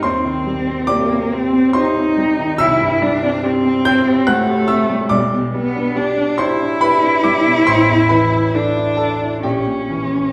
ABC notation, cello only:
X:1
M:3/4
L:1/8
Q:1/4=70
K:Cm
V:1 name="Cello"
C2 B, C E2 | [K:G] E D C2 A,2 | G, B, D E3- | E2 D2 ^C2 |]